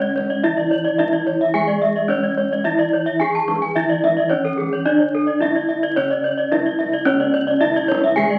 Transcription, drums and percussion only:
0, 0, Header, 1, 2, 480
1, 0, Start_track
1, 0, Tempo, 552690
1, 377, Time_signature, 4, 2, 24, 8
1, 7284, End_track
2, 0, Start_track
2, 0, Title_t, "Kendang"
2, 152, Note_on_c, 9, 62, 14
2, 152, Note_on_c, 9, 63, 32
2, 152, Note_on_c, 9, 64, 35
2, 238, Note_off_c, 9, 62, 0
2, 238, Note_off_c, 9, 63, 0
2, 238, Note_off_c, 9, 64, 0
2, 271, Note_on_c, 9, 62, 15
2, 358, Note_off_c, 9, 62, 0
2, 510, Note_on_c, 9, 62, 16
2, 596, Note_off_c, 9, 62, 0
2, 868, Note_on_c, 9, 62, 14
2, 868, Note_on_c, 9, 63, 36
2, 955, Note_off_c, 9, 62, 0
2, 955, Note_off_c, 9, 63, 0
2, 984, Note_on_c, 9, 62, 15
2, 1071, Note_off_c, 9, 62, 0
2, 1104, Note_on_c, 9, 64, 38
2, 1191, Note_off_c, 9, 64, 0
2, 1229, Note_on_c, 9, 62, 15
2, 1316, Note_off_c, 9, 62, 0
2, 1346, Note_on_c, 9, 62, 15
2, 1346, Note_on_c, 9, 64, 43
2, 1433, Note_off_c, 9, 62, 0
2, 1433, Note_off_c, 9, 64, 0
2, 1702, Note_on_c, 9, 62, 12
2, 1789, Note_off_c, 9, 62, 0
2, 1826, Note_on_c, 9, 62, 12
2, 1826, Note_on_c, 9, 63, 33
2, 1826, Note_on_c, 9, 64, 29
2, 1913, Note_off_c, 9, 62, 0
2, 1913, Note_off_c, 9, 63, 0
2, 1913, Note_off_c, 9, 64, 0
2, 2069, Note_on_c, 9, 62, 12
2, 2156, Note_off_c, 9, 62, 0
2, 2184, Note_on_c, 9, 62, 15
2, 2271, Note_off_c, 9, 62, 0
2, 2421, Note_on_c, 9, 62, 14
2, 2507, Note_off_c, 9, 62, 0
2, 2776, Note_on_c, 9, 62, 14
2, 2776, Note_on_c, 9, 64, 34
2, 2863, Note_off_c, 9, 62, 0
2, 2863, Note_off_c, 9, 64, 0
2, 2909, Note_on_c, 9, 62, 11
2, 2996, Note_off_c, 9, 62, 0
2, 3022, Note_on_c, 9, 63, 41
2, 3109, Note_off_c, 9, 63, 0
2, 3150, Note_on_c, 9, 62, 16
2, 3237, Note_off_c, 9, 62, 0
2, 3271, Note_on_c, 9, 62, 12
2, 3271, Note_on_c, 9, 64, 39
2, 3357, Note_off_c, 9, 62, 0
2, 3357, Note_off_c, 9, 64, 0
2, 3506, Note_on_c, 9, 63, 42
2, 3593, Note_off_c, 9, 63, 0
2, 3626, Note_on_c, 9, 62, 12
2, 3713, Note_off_c, 9, 62, 0
2, 3750, Note_on_c, 9, 62, 14
2, 3750, Note_on_c, 9, 64, 31
2, 3837, Note_off_c, 9, 62, 0
2, 3837, Note_off_c, 9, 64, 0
2, 3996, Note_on_c, 9, 62, 10
2, 3996, Note_on_c, 9, 63, 32
2, 3996, Note_on_c, 9, 64, 28
2, 4083, Note_off_c, 9, 62, 0
2, 4083, Note_off_c, 9, 63, 0
2, 4083, Note_off_c, 9, 64, 0
2, 4120, Note_on_c, 9, 62, 13
2, 4206, Note_off_c, 9, 62, 0
2, 4350, Note_on_c, 9, 62, 14
2, 4437, Note_off_c, 9, 62, 0
2, 4471, Note_on_c, 9, 62, 15
2, 4558, Note_off_c, 9, 62, 0
2, 4710, Note_on_c, 9, 62, 14
2, 4710, Note_on_c, 9, 63, 36
2, 4796, Note_off_c, 9, 62, 0
2, 4796, Note_off_c, 9, 63, 0
2, 4833, Note_on_c, 9, 62, 13
2, 4920, Note_off_c, 9, 62, 0
2, 4952, Note_on_c, 9, 64, 31
2, 5039, Note_off_c, 9, 64, 0
2, 5065, Note_on_c, 9, 62, 15
2, 5152, Note_off_c, 9, 62, 0
2, 5185, Note_on_c, 9, 62, 14
2, 5185, Note_on_c, 9, 64, 50
2, 5272, Note_off_c, 9, 62, 0
2, 5272, Note_off_c, 9, 64, 0
2, 5544, Note_on_c, 9, 62, 13
2, 5631, Note_off_c, 9, 62, 0
2, 5664, Note_on_c, 9, 62, 12
2, 5664, Note_on_c, 9, 63, 37
2, 5664, Note_on_c, 9, 64, 30
2, 5751, Note_off_c, 9, 62, 0
2, 5751, Note_off_c, 9, 63, 0
2, 5751, Note_off_c, 9, 64, 0
2, 5910, Note_on_c, 9, 62, 14
2, 5910, Note_on_c, 9, 63, 29
2, 5997, Note_off_c, 9, 62, 0
2, 5997, Note_off_c, 9, 63, 0
2, 6029, Note_on_c, 9, 62, 16
2, 6116, Note_off_c, 9, 62, 0
2, 6267, Note_on_c, 9, 62, 23
2, 6353, Note_off_c, 9, 62, 0
2, 6628, Note_on_c, 9, 62, 22
2, 6628, Note_on_c, 9, 64, 51
2, 6714, Note_off_c, 9, 62, 0
2, 6714, Note_off_c, 9, 64, 0
2, 6754, Note_on_c, 9, 62, 23
2, 6841, Note_off_c, 9, 62, 0
2, 6874, Note_on_c, 9, 63, 56
2, 6960, Note_off_c, 9, 63, 0
2, 6987, Note_on_c, 9, 62, 26
2, 7074, Note_off_c, 9, 62, 0
2, 7099, Note_on_c, 9, 62, 20
2, 7099, Note_on_c, 9, 64, 80
2, 7186, Note_off_c, 9, 62, 0
2, 7186, Note_off_c, 9, 64, 0
2, 7284, End_track
0, 0, End_of_file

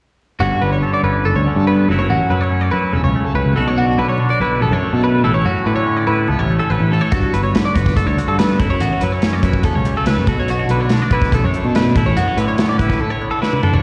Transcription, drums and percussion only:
0, 0, Header, 1, 2, 480
1, 0, Start_track
1, 0, Tempo, 419874
1, 464, Time_signature, 4, 2, 24, 8
1, 15804, End_track
2, 0, Start_track
2, 0, Title_t, "Drums"
2, 8137, Note_on_c, 9, 42, 69
2, 8142, Note_on_c, 9, 36, 98
2, 8251, Note_off_c, 9, 42, 0
2, 8256, Note_off_c, 9, 36, 0
2, 8390, Note_on_c, 9, 42, 57
2, 8504, Note_off_c, 9, 42, 0
2, 8629, Note_on_c, 9, 42, 69
2, 8639, Note_on_c, 9, 38, 97
2, 8743, Note_off_c, 9, 42, 0
2, 8754, Note_off_c, 9, 38, 0
2, 8866, Note_on_c, 9, 36, 72
2, 8875, Note_on_c, 9, 42, 54
2, 8981, Note_off_c, 9, 36, 0
2, 8987, Note_on_c, 9, 36, 82
2, 8990, Note_off_c, 9, 42, 0
2, 9001, Note_on_c, 9, 38, 29
2, 9101, Note_off_c, 9, 36, 0
2, 9108, Note_on_c, 9, 36, 84
2, 9115, Note_off_c, 9, 38, 0
2, 9116, Note_on_c, 9, 42, 76
2, 9223, Note_off_c, 9, 36, 0
2, 9230, Note_off_c, 9, 42, 0
2, 9357, Note_on_c, 9, 42, 54
2, 9471, Note_off_c, 9, 42, 0
2, 9590, Note_on_c, 9, 42, 77
2, 9600, Note_on_c, 9, 38, 96
2, 9704, Note_off_c, 9, 42, 0
2, 9715, Note_off_c, 9, 38, 0
2, 9827, Note_on_c, 9, 36, 95
2, 9830, Note_on_c, 9, 42, 59
2, 9941, Note_off_c, 9, 36, 0
2, 9945, Note_off_c, 9, 42, 0
2, 10065, Note_on_c, 9, 42, 78
2, 10179, Note_off_c, 9, 42, 0
2, 10301, Note_on_c, 9, 42, 61
2, 10415, Note_off_c, 9, 42, 0
2, 10540, Note_on_c, 9, 42, 75
2, 10550, Note_on_c, 9, 38, 93
2, 10654, Note_off_c, 9, 42, 0
2, 10664, Note_off_c, 9, 38, 0
2, 10780, Note_on_c, 9, 36, 69
2, 10781, Note_on_c, 9, 42, 57
2, 10895, Note_off_c, 9, 36, 0
2, 10895, Note_off_c, 9, 42, 0
2, 10900, Note_on_c, 9, 36, 77
2, 11013, Note_on_c, 9, 42, 74
2, 11014, Note_off_c, 9, 36, 0
2, 11020, Note_on_c, 9, 36, 87
2, 11128, Note_off_c, 9, 42, 0
2, 11134, Note_off_c, 9, 36, 0
2, 11263, Note_on_c, 9, 42, 56
2, 11378, Note_off_c, 9, 42, 0
2, 11500, Note_on_c, 9, 42, 76
2, 11511, Note_on_c, 9, 38, 99
2, 11615, Note_off_c, 9, 42, 0
2, 11625, Note_off_c, 9, 38, 0
2, 11743, Note_on_c, 9, 36, 95
2, 11745, Note_on_c, 9, 42, 58
2, 11857, Note_off_c, 9, 36, 0
2, 11859, Note_off_c, 9, 42, 0
2, 11983, Note_on_c, 9, 42, 66
2, 12098, Note_off_c, 9, 42, 0
2, 12220, Note_on_c, 9, 42, 52
2, 12335, Note_off_c, 9, 42, 0
2, 12454, Note_on_c, 9, 42, 72
2, 12464, Note_on_c, 9, 38, 92
2, 12568, Note_off_c, 9, 42, 0
2, 12579, Note_off_c, 9, 38, 0
2, 12697, Note_on_c, 9, 42, 50
2, 12700, Note_on_c, 9, 36, 74
2, 12812, Note_off_c, 9, 42, 0
2, 12814, Note_off_c, 9, 36, 0
2, 12824, Note_on_c, 9, 36, 77
2, 12837, Note_on_c, 9, 38, 31
2, 12938, Note_off_c, 9, 36, 0
2, 12944, Note_on_c, 9, 36, 83
2, 12950, Note_on_c, 9, 42, 76
2, 12952, Note_off_c, 9, 38, 0
2, 13059, Note_off_c, 9, 36, 0
2, 13065, Note_off_c, 9, 42, 0
2, 13192, Note_on_c, 9, 42, 50
2, 13306, Note_off_c, 9, 42, 0
2, 13433, Note_on_c, 9, 42, 77
2, 13443, Note_on_c, 9, 38, 100
2, 13547, Note_off_c, 9, 42, 0
2, 13558, Note_off_c, 9, 38, 0
2, 13668, Note_on_c, 9, 36, 95
2, 13671, Note_on_c, 9, 42, 55
2, 13782, Note_off_c, 9, 36, 0
2, 13786, Note_off_c, 9, 42, 0
2, 13909, Note_on_c, 9, 42, 73
2, 14023, Note_off_c, 9, 42, 0
2, 14150, Note_on_c, 9, 42, 61
2, 14264, Note_off_c, 9, 42, 0
2, 14381, Note_on_c, 9, 42, 74
2, 14392, Note_on_c, 9, 38, 100
2, 14496, Note_off_c, 9, 42, 0
2, 14506, Note_off_c, 9, 38, 0
2, 14625, Note_on_c, 9, 36, 67
2, 14627, Note_on_c, 9, 42, 58
2, 14739, Note_off_c, 9, 36, 0
2, 14741, Note_off_c, 9, 42, 0
2, 14744, Note_on_c, 9, 36, 76
2, 14755, Note_on_c, 9, 38, 29
2, 14858, Note_off_c, 9, 36, 0
2, 14869, Note_off_c, 9, 38, 0
2, 15351, Note_on_c, 9, 38, 51
2, 15465, Note_off_c, 9, 38, 0
2, 15468, Note_on_c, 9, 48, 54
2, 15583, Note_off_c, 9, 48, 0
2, 15583, Note_on_c, 9, 45, 77
2, 15698, Note_off_c, 9, 45, 0
2, 15701, Note_on_c, 9, 43, 70
2, 15804, Note_off_c, 9, 43, 0
2, 15804, End_track
0, 0, End_of_file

